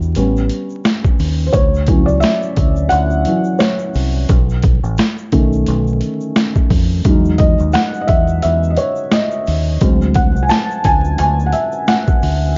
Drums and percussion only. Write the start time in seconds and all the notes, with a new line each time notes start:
0.02 shaker
0.15 closed hi-hat, shaker
0.37 shaker
0.49 closed hi-hat, shaker
0.70 shaker
0.85 snare, closed hi-hat, shaker
1.04 kick, shaker
1.19 open hi-hat, shaker
1.40 shaker
1.53 kick, closed hi-hat, shaker
1.74 shaker
1.87 kick, closed hi-hat
2.08 shaker
2.21 snare, closed hi-hat, shaker
2.43 shaker
2.56 kick, closed hi-hat
2.76 shaker
2.90 closed hi-hat, shaker
3.10 shaker
3.25 closed hi-hat, shaker
3.44 shaker
3.59 snare, closed hi-hat, shaker
3.79 shaker
3.94 open hi-hat, shaker
4.14 shaker
4.28 kick, closed hi-hat, shaker
4.49 shaker
4.62 kick, closed hi-hat
4.84 shaker
4.97 snare, closed hi-hat, shaker
5.18 shaker
5.32 kick, closed hi-hat
5.53 shaker
5.66 closed hi-hat, shaker
5.87 shaker
6.01 closed hi-hat, shaker
6.21 shaker
6.36 snare, closed hi-hat, shaker
6.55 kick, shaker
6.70 kick, open hi-hat, shaker
6.90 shaker
7.04 kick, closed hi-hat, shaker
7.25 shaker
7.38 kick, closed hi-hat
7.59 shaker
7.72 snare, closed hi-hat, shaker
7.94 shaker
8.08 kick, closed hi-hat
8.28 shaker
8.42 closed hi-hat, shaker
8.63 shaker
8.77 closed hi-hat, shaker
8.96 shaker
9.12 snare, closed hi-hat, shaker
9.31 shaker
9.46 open hi-hat, shaker
9.67 shaker
9.81 kick, closed hi-hat, shaker
10.02 shaker
10.14 kick, closed hi-hat
10.36 shaker
10.49 snare, closed hi-hat, shaker
10.71 shaker
10.84 kick, closed hi-hat
11.05 shaker
11.18 closed hi-hat, shaker
11.40 shaker
11.52 closed hi-hat, shaker
11.72 shaker
11.87 snare, closed hi-hat, shaker
12.07 kick, shaker
12.22 open hi-hat, shaker
12.42 shaker